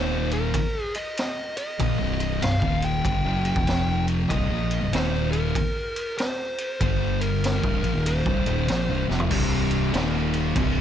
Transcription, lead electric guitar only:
Already playing: C5
0.33 A#4
0.82 G#4
0.96 D#5
1.58 D#5
2.43 F5
2.84 G5
4.29 D#5
4.93 C5
5.32 A#4
6.18 C5
6.81 C5
7.22 A#4
8.07 C5

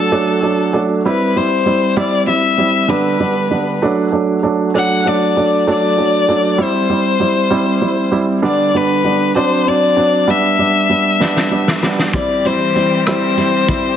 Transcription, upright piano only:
0.12 F#3 A3 D4
0.42 F#3 A3 D4
0.73 F#3 A3 D4
1.05 G3 C4 E4
1.36 G3 C4 E4
1.66 G3 C4 E4
1.97 G3 C4 E4
2.27 G3 C4 E4
2.58 G3 C4 E4
2.88 D3 G3 B3 D4
3.20 D3 G3 B3 D4
3.51 D3 G3 B3 D4
3.82 F#3 A3 D4
4.12 F#3 A3 D4
4.43 F#3 A3 D4
4.74 F#3 A3 D4
5.05 F#3 A3 D4
5.37 F#3 A3 D4
5.67 F#3 A3 D4
5.98 F#3 A3 D4
6.29 F#3 A3 D4
6.58 G3 C4 E4
6.89 G3 C4 E4
7.20 G3 C4 E4
7.51 G3 C4 E4
7.81 G3 C4 E4
8.12 G3 C4 E4
8.42 D3 G3 B3 D4
8.74 D3 G3 B3 D4
9.04 D3 G3 B3 D4
9.35 F#3 C4 D4
9.67 F#3 C4 D4
9.96 F#3 C4 D4
10.28 G3 B3 D4
10.59 G3 B3 D4
10.89 G3 B3 D4
11.20 G3 B3 D4
11.51 G3 B3 D4
11.83 G3 B3 D4
12.14 G3 C4 E4
12.45 G3 C4 E4
12.75 G3 C4 E4
13.07 G3 C4 E4
13.37 G3 C4 E4
13.68 G3 C4 E4

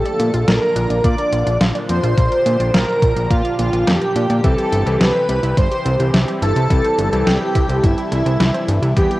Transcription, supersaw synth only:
Already playing: A4
0.47 A#4
1.04 D5
1.89 C5
2.74 A#4
3.31 F4
3.59 F4
3.88 G4
4.44 A4
5.01 B4
5.57 C5
6.42 A4
7.27 G4
7.84 E4
8.12 E4
8.97 G4

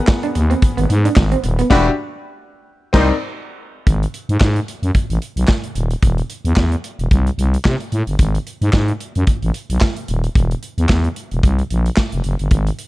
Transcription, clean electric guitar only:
0.23 D4
0.35 muted clean electric guitar stroke
0.50 C4
0.77 B3
0.89 muted clean electric guitar stroke
1.05 D4
1.32 C4
1.44 muted clean electric guitar stroke
1.59 B3

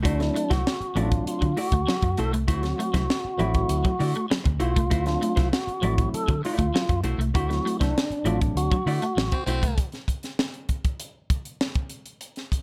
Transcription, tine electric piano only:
0.04 C4 E4
0.19 F#3 A3 C4 E4
0.95 F#3 A3 C4 C#4
1.03 D4
2.47 C4 F#4
2.62 F#3 A3 C4 F#4
3.38 F#3 A3 C4 E4
4.90 C4 F#4
5.06 F#3 A3 C4 D4
5.82 F#3 A3 C4 E4
7.33 C4 D4
7.49 F#3 A3 C4 E4
8.24 F#3 A3 C4 D4

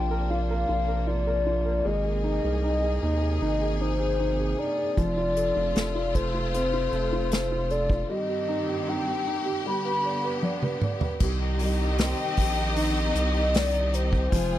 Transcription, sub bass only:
Already playing: A#1
0.69 A#1
1.85 G#1
2.44 C2
3.03 D#2
3.41 G#1
4.97 F1
5.56 F1
5.75 F1
6.92 F1
11.20 C2
12.38 A#1
13.15 C2
14.32 F1

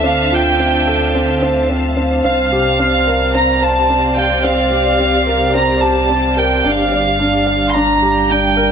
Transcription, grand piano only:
Already playing: C4 F4 A4 C5 D5
0.04 C4
0.32 F4
0.59 C4
0.87 A4
1.14 C4
1.42 C4
1.69 C4
1.97 C4
2.24 C4
2.52 G4
2.79 C4
3.07 A#4
3.34 C4
3.62 C5
3.89 C4
4.17 F5
4.44 C4
4.71 G4
4.99 C4
5.27 A#4
5.54 C4
5.82 G4
6.09 C4
6.37 A#4
6.64 D4
6.92 D5
7.19 D4
7.47 F5
7.75 D4
8.02 G4
8.30 D4
8.57 A#4

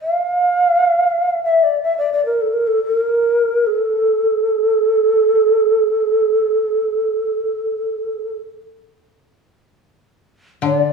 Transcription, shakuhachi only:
0.02 F5
1.45 E5
1.63 D5
1.83 E5
1.98 D5
2.13 D5
2.26 A#4
2.41 A4
2.53 A#4
2.67 A4
2.85 A#4
3.67 A4
10.65 C#5
10.77 D5

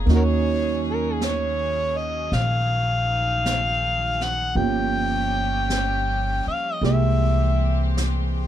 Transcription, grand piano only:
Already playing: G#4 A#5
0.05 A#3 C#4 D#4
0.10 F#4
4.55 A#3 C#4 F4 G4
6.82 G#3 A#3 E4 G4

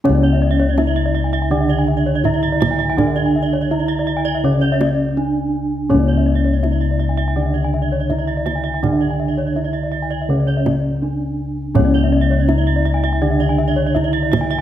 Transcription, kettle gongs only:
0.04 C#4
0.09 C#2
0.78 D4
2.25 D4
2.98 D4
3.71 D4
4.43 C#3
5.17 D4
5.89 C#4
5.95 C#2
6.63 D4
8.09 D4
8.83 D4
9.55 D4
10.29 C#3
11.03 D4
11.75 C#4
11.80 C#2
12.48 D4
13.94 D4

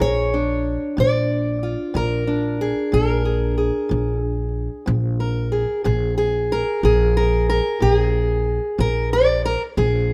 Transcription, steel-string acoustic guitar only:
Already playing: G#4
0.00 A#2 C#5
0.34 D4
0.97 A#2 D5
1.63 F4
1.94 A#2 A#4
2.27 D4
2.61 G#4
2.92 A#2 A#4
3.25 G#4
3.58 G#4
3.89 A#2
4.26 G#4
4.86 A#2
5.20 A#4
5.52 G#4
5.84 A#2 G#4
6.18 G#4
6.52 A#4
6.83 A#2 G#4
7.17 A#4
7.50 A#4
7.80 A#2 G4
7.93 G#4
8.78 A#2 A#4
9.13 D5
9.45 A#4
9.77 A#2 G#4

